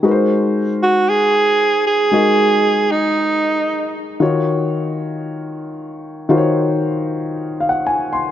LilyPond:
<<
  \new Staff \with { instrumentName = "Alto saxophone" } { \time 4/4 \key aes \mixolydian \tempo 4 = 115 r4. ges'8 aes'4. aes'8~ | aes'4. ees'2 r8 | r1 | r1 | }
  \new Staff \with { instrumentName = "Grand piano" } { \time 4/4 \key aes \mixolydian << { r1 | r1 | r1 | r2 \tuplet 3/2 { r8. f''16 ges''8 } aes''8 c'''8 | } \\ { <aes ees' ges' bes' ces'' c''>1 | <aes ees' ges' bes' ees''>1 | <ees ees' f' ges' des''>1 | <ees ees' f' ges' c'' des''>1 | } >> }
>>